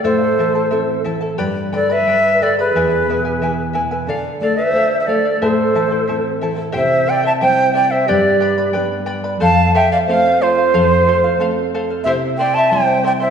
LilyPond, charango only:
\new Staff \with { instrumentName = "Charango" } { \time 2/4 \key a \minor \tempo 4 = 90 <e' a' c'' e'' a''>8 <e' a' e'' a''>16 <e' a' a''>16 <e' a' e'' a''>8 <e' a' e'' a''>16 <e' a' a''>16 | <g' b' d'' g'' b''>8 <b' d'' g'' b''>16 <b' d'' b''>16 <b' d'' g'' b''>8 <b' d'' g'' b''>16 <b' d'' b''>16 | <e' gis' b' e'' gis''>8 <e' b' e'' gis''>16 <e' b' gis''>16 <e' b' e'' gis''>8 <e' b' e'' gis''>16 <e' b' gis''>16 | <a' d'' f''>8 <a' d'' f''>16 <d'' f''>16 <a' d'' f''>8 <a' d'' f''>16 <d'' f''>16 |
<e' a' c'' e'' a''>8 <e' a' e'' a''>16 <e' a' a''>16 <e' a' e'' a''>8 <e' a' e'' a''>16 <e' a' a''>16 | <e' g' c'' e'' g''>8 <e' c'' e'' g''>16 <e' c'' g''>16 <e' c'' e'' g''>8 <e' c'' e'' g''>16 <e' c'' g''>16 | <g' b' d'' g'' b''>8 <b' d'' g'' b''>16 <b' d'' b''>16 <b' d'' g'' b''>8 <b' d'' g'' b''>16 <b' d'' b''>16 | <a' c'' f''>8 <a' c'' f''>16 <c'' f''>16 <a' c'' f''>8 <a' c'' f''>16 <c'' f''>16 |
<a' c'' f''>8 <a' c'' f''>16 <c'' f''>16 <a' c'' f''>8 <a' c'' f''>16 <c'' f''>16 | <e' g' c'' e'' c'''>8 <e' c'' e'' c'''>16 <e' e'' c'''>16 <e' c'' e'' c'''>8 <e' c'' e'' c'''>16 <e' e'' c'''>16 | }